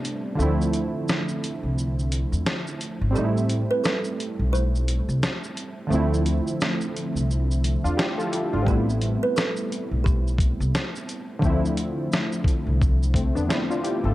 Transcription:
0.00 0.38 C3 soft
0.00 0.38 G3 soft
0.00 0.38 A3 soft
0.00 0.39 B3 soft
0.00 0.40 D4 soft
0.05 closed hi-hat medium
0.05 shaker medium
0.35 0.87 D2 medium
0.35 3.09 D3 medium
0.35 3.10 F3 medium
0.35 3.11 A3 medium
0.40 3.10 C4 medium
0.40 3.12 E4 medium
0.40 shaker medium
0.62 shaker soft
0.73 closed hi-hat medium
0.73 shaker soft
1.08 snare loud
1.08 shaker medium
1.28 shaker soft
1.44 closed hi-hat medium
1.44 shaker soft
1.63 2.23 C2 medium
1.78 shaker medium
1.99 shaker soft
2.12 closed hi-hat medium
2.12 shaker medium
2.32 2.44 E2 medium
2.32 shaker soft
2.46 snare loud
2.46 shaker medium
2.67 shaker soft
2.81 closed hi-hat medium
2.81 shaker medium
3.01 3.13 G#1 medium
3.11 3.63 A1 medium
3.11 5.85 G3 medium
3.11 5.86 A3 medium
3.11 5.85 C4 medium
3.16 3.24 D#4 medium
3.16 3.72 G4 medium
3.16 shaker soft
3.25 5.92 E4 medium
3.37 shaker soft
3.50 closed hi-hat medium
3.50 shaker soft
3.71 3.77 B4 medium
3.84 4.49 A4 medium
3.84 snare loud
3.84 shaker medium
4.04 shaker soft
4.20 closed hi-hat medium
4.20 shaker soft
4.39 4.99 B1 medium
4.53 5.52 C5 medium
4.53 shaker medium
4.75 shaker soft
4.88 closed hi-hat medium
4.88 shaker medium
5.09 5.20 C2 medium
5.09 shaker soft
5.23 snare loud
5.23 shaker medium
5.44 shaker soft
5.57 closed hi-hat medium
5.57 shaker medium
5.87 6.39 D2 medium
5.87 7.92 D3 medium
5.87 7.92 F3 medium
5.87 7.93 A3 medium
5.92 7.94 C4 medium
5.92 7.61 E4 medium
5.92 shaker soft
6.14 shaker soft
6.26 closed hi-hat medium
6.26 shaker soft
6.47 shaker soft
6.61 snare loud
6.61 shaker medium
6.81 shaker soft
6.96 closed hi-hat medium
6.96 shaker soft
7.15 7.75 C2 medium
7.15 shaker medium
7.31 shaker soft
7.51 shaker soft
7.64 closed hi-hat medium
7.64 shaker medium
7.84 7.96 E2 medium
7.84 7.97 D4 soft
7.84 7.97 F4 medium
7.84 shaker soft
7.97 8.18 E4 medium
7.97 8.17 G4 medium
7.97 snare loud
7.97 shaker medium
8.18 8.31 F4 medium
8.18 8.31 A4 medium
8.18 shaker soft
8.32 8.52 E4 soft
8.32 8.52 G4 medium
8.32 closed hi-hat medium
8.32 shaker soft
8.53 8.65 G#1 medium
8.53 8.86 D4 soft
8.53 8.86 F4 medium
8.63 11.37 G3 medium
8.63 11.38 A3 medium
8.63 11.36 C4 medium
8.63 kick medium
8.67 9.15 A1 loud
8.67 11.39 B3 medium
8.67 11.40 E4 medium
8.67 9.24 G4 medium
8.67 shaker medium
8.89 shaker soft
9.01 closed hi-hat medium
9.01 shaker soft
9.23 9.35 B4 medium
9.36 10.07 A4 medium
9.36 snare loud
9.36 shaker medium
9.56 shaker soft
9.72 closed hi-hat medium
9.72 shaker soft
9.91 10.51 B1 medium
10.04 11.04 G4 medium
10.04 kick medium
10.04 shaker soft
10.27 shaker soft
10.38 kick medium
10.38 closed hi-hat medium
10.38 shaker soft
10.60 10.72 C2 medium
10.60 shaker soft
10.75 snare loud
10.75 shaker medium
10.96 shaker soft
11.09 closed hi-hat medium
11.09 shaker soft
11.39 11.90 D2 medium
11.39 14.13 D3 medium
11.39 14.13 F3 medium
11.39 13.11 A3 medium
11.39 kick medium
11.44 13.12 C4 medium
11.44 13.13 E4 medium
11.44 shaker medium
11.65 shaker soft
11.77 closed hi-hat medium
11.77 shaker soft
12.12 snare loud
12.12 shaker medium
12.32 shaker soft
12.44 kick medium
12.44 closed hi-hat medium
12.44 shaker soft
12.67 13.26 C2 medium
12.82 kick medium
12.82 shaker soft
13.03 shaker soft
13.14 13.35 A3 soft
13.14 13.35 C4 medium
13.14 kick medium
13.14 closed hi-hat medium
13.14 shaker soft
13.35 13.47 E2 medium
13.35 13.49 B3 medium
13.35 13.48 D4 medium
13.35 shaker soft
13.49 13.69 C4 medium
13.49 13.69 E4 medium
13.49 snare loud
13.49 shaker medium
13.70 13.83 D4 medium
13.70 13.83 F4 medium
13.70 shaker medium
13.84 14.04 E4 soft
13.84 14.04 G4 medium
13.84 closed hi-hat medium
13.84 shaker soft
14.04 14.14 G#1 medium
14.04 14.14 F4 soft
14.04 14.14 A4 medium

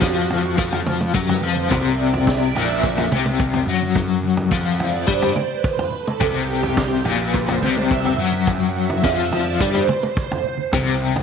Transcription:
0.00 0.54 F2 medium
0.00 0.56 F3 loud
0.00 0.69 F#4 medium
0.00 kick loud
0.00 snare medium
0.00 high conga medium
0.29 floor tom medium
0.29 low conga medium
0.57 1.10 F2 medium
0.57 1.13 F3 loud
0.57 kick loud
0.57 low conga medium
0.72 floor tom medium
0.86 mid tom medium
0.86 high conga medium
1.00 mid tom medium
1.14 1.41 F#2 medium
1.14 1.42 F#3 loud
1.14 kick loud
1.28 floor tom medium
1.28 high conga medium
1.41 1.69 F2 loud
1.41 1.69 F3 medium
1.41 low conga medium
1.56 high conga medium
1.70 2.51 C2 loud
1.70 2.54 C3 medium
1.70 kick loud
1.70 floor tom loud
1.95 2.26 D5 loud
2.13 floor tom medium
2.26 kick loud
2.26 snare medium
2.26 high conga medium
2.49 3.04 E5 medium
2.54 3.08 A#1 medium
2.54 3.10 A#2 loud
2.54 floor tom medium
2.54 low conga medium
2.83 kick loud
2.83 low conga medium
2.98 floor tom medium
3.11 3.64 C2 medium
3.11 3.67 C3 medium
3.11 mid tom medium
3.11 high conga medium
3.25 mid tom medium
3.40 kick loud
3.53 floor tom medium
3.53 high conga medium
3.66 4.47 F#2 medium
3.66 4.51 F#3 medium
3.66 low conga medium
3.81 high conga medium
3.95 kick loud
3.95 floor tom medium
4.23 high conga medium
4.37 floor tom medium
4.51 5.04 F2 medium
4.51 5.07 F3 medium
4.51 kick loud
4.51 high conga medium
4.79 5.09 D5 medium
4.79 floor tom medium
4.79 low conga medium
5.07 5.34 G2 medium
5.07 5.35 G3 loud
5.07 kick loud
5.22 floor tom medium
5.35 mid tom medium
5.35 high conga medium
5.64 kick loud
5.77 floor tom medium
5.77 high conga medium
5.90 low conga medium
6.07 mid tom medium
6.20 7.02 C2 medium
6.20 7.04 C3 loud
6.20 kick loud
6.20 floor tom medium
6.25 7.10 G4 medium
6.63 floor tom medium
6.75 kick loud
6.75 snare medium
6.75 high conga medium
7.05 7.58 A#1 medium
7.05 7.61 A#2 loud
7.05 floor tom medium
7.05 low conga medium
7.34 kick loud
7.34 low conga medium
7.48 floor tom loud
7.61 8.14 C2 medium
7.61 8.18 C3 medium
7.61 mid tom medium
7.61 high conga medium
7.76 8.29 E5 loud
7.76 mid tom medium
7.91 kick loud
8.04 floor tom medium
8.04 high conga medium
8.17 8.99 F#2 medium
8.17 9.03 F#3 medium
8.17 low conga medium
8.32 high conga medium
8.47 kick loud
8.47 floor tom medium
8.90 floor tom medium
9.03 9.56 F2 loud
9.03 9.59 F3 medium
9.03 kick loud
9.03 snare medium
9.03 high conga medium
9.31 floor tom medium
9.31 low conga medium
9.60 9.86 G2 medium
9.60 9.88 G3 loud
9.60 kick loud
9.60 low conga medium
9.74 floor tom medium
9.88 mid tom medium
9.88 high conga medium
10.03 10.56 C5 medium
10.03 mid tom medium
10.17 kick loud
10.31 floor tom medium
10.31 high conga medium
10.44 low conga medium
10.57 high conga medium
10.72 11.23 C2 loud
10.72 11.23 C3 loud
10.72 kick loud
10.72 floor tom medium
11.16 floor tom medium

